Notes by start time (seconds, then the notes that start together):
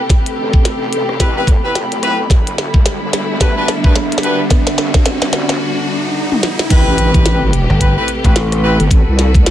Already playing: C3 A3 G4 A4 G5 B5, riser
0.10 C4, kick, snare, closed hi-hat
0.26 closed hi-hat
0.38 A1
0.53 kick
0.65 snare, closed hi-hat
0.93 A1, closed hi-hat
1.09 cross-stick
1.20 A1 C4 E4 G4 B4, kick, snare, closed hi-hat
1.37 C4 E4 G4 B4
1.47 G1, kick, cross-stick, closed hi-hat
1.64 C4 E4 G4 B4
1.75 snare, closed hi-hat
1.92 closed hi-hat
2.03 C4 E4 G4 B4, cross-stick, closed hi-hat
2.30 E1 D3 G3 B3 D4 E4, kick, snare, closed hi-hat
2.39 G3
2.47 closed hi-hat
2.58 snare
2.64 E5
2.74 E1, kick
2.86 snare, closed hi-hat
3.13 snare, closed hi-hat
3.40 D4 F#4 G4 B4, kick, snare, closed hi-hat
3.57 D4 F#4 G4 B4
3.68 snare, closed hi-hat
3.84 E2 D4 F#4 G4 B4, kick
3.96 snare, closed hi-hat
4.12 closed hi-hat
4.18 snare
4.23 D4 F#4 G4 B4, closed hi-hat
4.50 F#4, kick, snare, closed hi-hat
4.67 snare, closed hi-hat
4.78 E1, snare
4.94 kick, snare
5.06 snare, closed hi-hat
5.22 snare
5.33 E1, snare, closed hi-hat
5.49 snare
6.32 high tom
6.43 snare
6.59 snare
6.70 A1 C3 A3 C4 E4 G4 B4, kick, closed hi-hat, crash, impact
6.81 A4
6.87 A1
6.98 closed hi-hat
7.14 kick, closed hi-hat
7.26 snare, closed hi-hat
7.53 closed hi-hat
7.70 G1, cross-stick
7.81 C4 E4 G4 B4, kick, closed hi-hat
7.97 C4 E4 G4 B4
8.08 closed hi-hat
8.24 A1 C4 E4 G4 B4, kick, closed hi-hat
8.36 snare, closed hi-hat
8.52 cross-stick, closed hi-hat
8.63 C4 E4 G4 B4
8.80 G1, closed hi-hat
8.91 A1 F#4, kick, closed hi-hat
9.08 C2
9.19 snare, closed hi-hat
9.34 kick, closed hi-hat
9.46 snare, closed hi-hat